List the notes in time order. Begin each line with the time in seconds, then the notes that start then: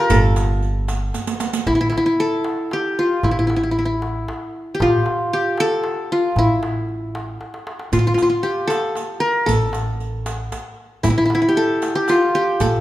Already playing: F4 G4 A#4
0.10 G1 A4, riq, darbuka dum
0.36 riq, darbuka tek
0.49 darbuka ka
0.63 riq
0.88 riq, darbuka tek
1.14 riq, darbuka tek
1.27 riq, darbuka ka
1.40 riq, darbuka tek
1.53 riq, darbuka ka
1.66 A1 E4, darbuka dum
1.75 E4
1.81 E4
1.90 E4, darbuka tek
1.97 E4
2.06 E4
2.20 A4
2.44 darbuka tek
2.71 G4, darbuka tek
2.99 F4
3.23 A1 E4, darbuka dum
3.31 E4
3.39 E4
3.47 E4, darbuka tek
3.56 E4
3.63 E4
3.71 E4
3.79 E4
3.85 E4
4.02 darbuka tek
4.28 darbuka tek
4.75 G4
4.80 A1 F4, darbuka dum
5.06 darbuka tek
5.33 G4
5.58 A4, darbuka tek
5.84 darbuka tek
6.12 F4
6.36 A1 E4, darbuka dum
6.63 darbuka tek
6.89 darbuka ka
7.15 darbuka tek
7.41 darbuka tek
7.54 darbuka ka
7.67 darbuka tek
7.79 darbuka ka
7.92 A1 F4, riq, darbuka dum
7.99 F4
8.07 F4
8.14 F4, darbuka tek
8.18 F4, riq
8.30 F4
8.43 G4, riq
8.67 A4, riq, darbuka tek
8.96 riq, darbuka tek
9.20 A#4
9.46 A1 A4, riq, darbuka dum
9.73 riq, darbuka tek
10.00 riq
10.26 riq, darbuka tek
10.52 riq, darbuka tek
11.03 A1 E4, riq, darbuka dum
11.10 E4
11.18 E4
11.25 E4
11.30 darbuka tek
11.35 E4
11.42 E4
11.49 G4
11.56 A4, riq
11.82 riq, darbuka tek
11.95 G4
12.08 F4, riq, darbuka tek
12.35 G4
12.60 A1 A4, riq, darbuka dum